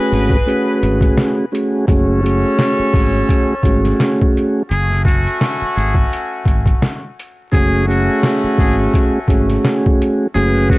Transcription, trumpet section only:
0, 0, Header, 1, 2, 480
1, 0, Start_track
1, 0, Key_signature, 3, "minor"
1, 0, Tempo, 705882
1, 1278, Time_signature, 4, 2, 24, 8
1, 7333, End_track
2, 0, Start_track
2, 0, Title_t, "Trumpet section"
2, 0, Program_c, 0, 61
2, 0, Note_on_c, 0, 66, 88
2, 0, Note_on_c, 0, 68, 91
2, 0, Note_on_c, 0, 71, 110
2, 1013, Note_off_c, 0, 66, 0
2, 1013, Note_off_c, 0, 68, 0
2, 1013, Note_off_c, 0, 71, 0
2, 1267, Note_on_c, 0, 61, 99
2, 1267, Note_on_c, 0, 69, 93
2, 1267, Note_on_c, 0, 73, 102
2, 2925, Note_off_c, 0, 61, 0
2, 2925, Note_off_c, 0, 69, 0
2, 2925, Note_off_c, 0, 73, 0
2, 3192, Note_on_c, 0, 57, 102
2, 3192, Note_on_c, 0, 61, 94
2, 3192, Note_on_c, 0, 66, 98
2, 4848, Note_off_c, 0, 57, 0
2, 4848, Note_off_c, 0, 61, 0
2, 4848, Note_off_c, 0, 66, 0
2, 5116, Note_on_c, 0, 61, 93
2, 5116, Note_on_c, 0, 66, 94
2, 5117, Note_on_c, 0, 57, 107
2, 6770, Note_off_c, 0, 57, 0
2, 6770, Note_off_c, 0, 61, 0
2, 6770, Note_off_c, 0, 66, 0
2, 7043, Note_on_c, 0, 66, 90
2, 7043, Note_on_c, 0, 68, 94
2, 7043, Note_on_c, 0, 71, 112
2, 7333, Note_off_c, 0, 66, 0
2, 7333, Note_off_c, 0, 68, 0
2, 7333, Note_off_c, 0, 71, 0
2, 7333, End_track
0, 0, End_of_file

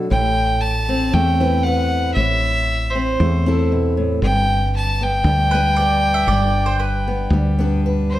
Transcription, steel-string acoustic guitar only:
0, 0, Header, 1, 2, 480
1, 0, Start_track
1, 0, Key_signature, 1, "major"
1, 0, Tempo, 515021
1, 103, Time_signature, 4, 2, 24, 8
1, 7637, End_track
2, 0, Start_track
2, 0, Title_t, "Steel-string acoustic guitar"
2, 0, Program_c, 0, 25
2, 0, Note_on_c, 0, 69, 69
2, 95, Note_on_c, 0, 45, 76
2, 826, Note_on_c, 0, 60, 64
2, 1063, Note_on_c, 0, 57, 69
2, 1295, Note_off_c, 0, 60, 0
2, 1305, Note_on_c, 0, 60, 64
2, 1309, Note_on_c, 0, 64, 68
2, 1312, Note_off_c, 0, 69, 0
2, 1315, Note_on_c, 0, 71, 72
2, 1548, Note_off_c, 0, 71, 0
2, 1552, Note_on_c, 0, 71, 76
2, 1988, Note_off_c, 0, 45, 0
2, 1993, Note_off_c, 0, 57, 0
2, 1994, Note_off_c, 0, 60, 0
2, 1995, Note_off_c, 0, 64, 0
2, 2024, Note_on_c, 0, 45, 80
2, 2052, Note_off_c, 0, 71, 0
2, 2752, Note_on_c, 0, 60, 60
2, 2986, Note_on_c, 0, 57, 66
2, 3216, Note_off_c, 0, 60, 0
2, 3227, Note_on_c, 0, 60, 70
2, 3235, Note_on_c, 0, 64, 66
2, 3244, Note_on_c, 0, 69, 68
2, 3461, Note_off_c, 0, 45, 0
2, 3465, Note_on_c, 0, 47, 72
2, 3698, Note_off_c, 0, 47, 0
2, 3702, Note_on_c, 0, 45, 75
2, 3913, Note_off_c, 0, 57, 0
2, 3914, Note_off_c, 0, 60, 0
2, 3918, Note_off_c, 0, 64, 0
2, 3923, Note_off_c, 0, 69, 0
2, 3941, Note_off_c, 0, 45, 0
2, 3944, Note_on_c, 0, 43, 80
2, 4671, Note_on_c, 0, 59, 65
2, 4907, Note_on_c, 0, 55, 70
2, 5144, Note_off_c, 0, 59, 0
2, 5161, Note_on_c, 0, 59, 63
2, 5165, Note_on_c, 0, 62, 64
2, 5170, Note_on_c, 0, 71, 73
2, 5391, Note_off_c, 0, 71, 0
2, 5402, Note_on_c, 0, 71, 75
2, 5841, Note_off_c, 0, 59, 0
2, 5842, Note_off_c, 0, 71, 0
2, 5861, Note_off_c, 0, 43, 0
2, 5871, Note_on_c, 0, 43, 76
2, 6594, Note_on_c, 0, 59, 61
2, 6828, Note_off_c, 0, 55, 0
2, 6832, Note_on_c, 0, 55, 70
2, 7059, Note_off_c, 0, 59, 0
2, 7070, Note_on_c, 0, 59, 68
2, 7073, Note_off_c, 0, 62, 0
2, 7086, Note_on_c, 0, 62, 67
2, 7090, Note_on_c, 0, 71, 70
2, 7312, Note_off_c, 0, 71, 0
2, 7323, Note_on_c, 0, 71, 71
2, 7637, Note_off_c, 0, 43, 0
2, 7637, Note_off_c, 0, 55, 0
2, 7637, Note_off_c, 0, 59, 0
2, 7637, Note_off_c, 0, 62, 0
2, 7637, Note_off_c, 0, 71, 0
2, 7637, End_track
0, 0, End_of_file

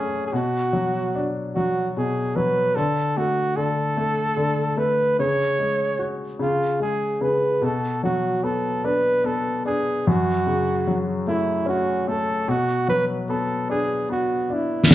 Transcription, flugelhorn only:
0, 0, Header, 1, 2, 480
1, 0, Start_track
1, 0, Tempo, 809717
1, 199, Time_signature, 6, 3, 24, 8
1, 8862, End_track
2, 0, Start_track
2, 0, Title_t, "Flugelhorn"
2, 0, Program_c, 0, 56
2, 0, Note_on_c, 0, 68, 64
2, 153, Note_off_c, 0, 68, 0
2, 157, Note_on_c, 0, 68, 56
2, 198, Note_on_c, 0, 66, 72
2, 206, Note_off_c, 0, 68, 0
2, 762, Note_off_c, 0, 66, 0
2, 918, Note_on_c, 0, 66, 70
2, 1143, Note_off_c, 0, 66, 0
2, 1174, Note_on_c, 0, 68, 70
2, 1399, Note_on_c, 0, 71, 78
2, 1408, Note_off_c, 0, 68, 0
2, 1633, Note_on_c, 0, 69, 81
2, 1642, Note_off_c, 0, 71, 0
2, 1881, Note_on_c, 0, 66, 72
2, 1890, Note_off_c, 0, 69, 0
2, 2113, Note_on_c, 0, 69, 80
2, 2122, Note_off_c, 0, 66, 0
2, 2833, Note_on_c, 0, 71, 72
2, 2842, Note_off_c, 0, 69, 0
2, 3074, Note_off_c, 0, 71, 0
2, 3082, Note_on_c, 0, 73, 89
2, 3596, Note_off_c, 0, 73, 0
2, 3803, Note_on_c, 0, 65, 70
2, 4024, Note_off_c, 0, 65, 0
2, 4042, Note_on_c, 0, 68, 68
2, 4279, Note_on_c, 0, 71, 65
2, 4288, Note_off_c, 0, 68, 0
2, 4530, Note_on_c, 0, 69, 73
2, 4539, Note_off_c, 0, 71, 0
2, 4765, Note_off_c, 0, 69, 0
2, 4768, Note_on_c, 0, 66, 73
2, 5002, Note_on_c, 0, 69, 71
2, 5010, Note_off_c, 0, 66, 0
2, 5245, Note_on_c, 0, 71, 73
2, 5254, Note_off_c, 0, 69, 0
2, 5489, Note_on_c, 0, 69, 70
2, 5498, Note_off_c, 0, 71, 0
2, 5723, Note_off_c, 0, 69, 0
2, 5726, Note_on_c, 0, 68, 71
2, 5976, Note_on_c, 0, 66, 76
2, 5984, Note_off_c, 0, 68, 0
2, 6530, Note_off_c, 0, 66, 0
2, 6686, Note_on_c, 0, 64, 74
2, 6906, Note_off_c, 0, 64, 0
2, 6929, Note_on_c, 0, 66, 67
2, 7160, Note_on_c, 0, 69, 69
2, 7169, Note_off_c, 0, 66, 0
2, 7406, Note_on_c, 0, 66, 76
2, 7414, Note_off_c, 0, 69, 0
2, 7641, Note_off_c, 0, 66, 0
2, 7644, Note_on_c, 0, 71, 79
2, 7739, Note_off_c, 0, 71, 0
2, 7881, Note_on_c, 0, 69, 67
2, 8103, Note_off_c, 0, 69, 0
2, 8122, Note_on_c, 0, 68, 75
2, 8343, Note_off_c, 0, 68, 0
2, 8368, Note_on_c, 0, 66, 65
2, 8615, Note_on_c, 0, 64, 61
2, 8623, Note_off_c, 0, 66, 0
2, 8862, Note_off_c, 0, 64, 0
2, 8862, End_track
0, 0, End_of_file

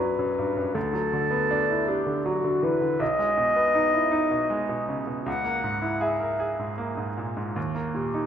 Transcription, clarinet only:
0, 0, Header, 1, 2, 480
1, 0, Start_track
1, 0, Tempo, 754717
1, 484, Time_signature, 3, 2, 24, 8
1, 3834, Tempo, 774194
1, 5220, End_track
2, 0, Start_track
2, 0, Title_t, "Clarinet"
2, 0, Program_c, 0, 71
2, 0, Note_on_c, 0, 71, 64
2, 470, Note_off_c, 0, 71, 0
2, 474, Note_on_c, 0, 69, 75
2, 1198, Note_on_c, 0, 67, 60
2, 1208, Note_off_c, 0, 69, 0
2, 1435, Note_on_c, 0, 66, 60
2, 1444, Note_off_c, 0, 67, 0
2, 1676, Note_on_c, 0, 71, 65
2, 1686, Note_off_c, 0, 66, 0
2, 1913, Note_off_c, 0, 71, 0
2, 1917, Note_on_c, 0, 75, 87
2, 3177, Note_off_c, 0, 75, 0
2, 3354, Note_on_c, 0, 78, 86
2, 3831, Note_on_c, 0, 76, 60
2, 3841, Note_off_c, 0, 78, 0
2, 4312, Note_off_c, 0, 76, 0
2, 5023, Note_on_c, 0, 67, 53
2, 5220, Note_off_c, 0, 67, 0
2, 5220, End_track
0, 0, End_of_file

